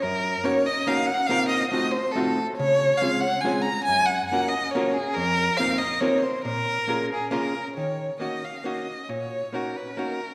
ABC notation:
X:1
M:3/4
L:1/16
Q:1/4=140
K:Bbm
V:1 name="Violin"
B4 d2 e2 f2 g2 | f2 e2 e2 c2 =A3 z | d4 f2 g2 a2 b2 | a2 g2 g2 e2 d2 A2 |
B4 f2 e2 d2 c2 | B6 A2 B4 | [K:Ebm] d4 e2 f2 e4 | d4 B2 c2 B4 |]
V:2 name="Hollow-body jazz guitar"
G,,4 [B,DEGB]2 z2 [B,DEGB]2 z2 | [B,CEFB]4 [=A,CEFG]2 z2 [A,CEFG]2 z2 | D,4 [A,CDFA]2 z2 [A,CDFA]2 z2 | G,,4 [B,DFGB]2 z2 [B,DFGB]2 z2 |
F,,4 [B,CEFB]2 z2 [B,CEFB]2 z2 | B,,4 [B,DFAB]2 z2 [B,DFAB]2 z2 | [K:Ebm] E,4 [B,DEG]2 z2 [B,DEG]2 z2 | B,,4 [B,DEG]2 z2 [B,DEG]2 z2 |]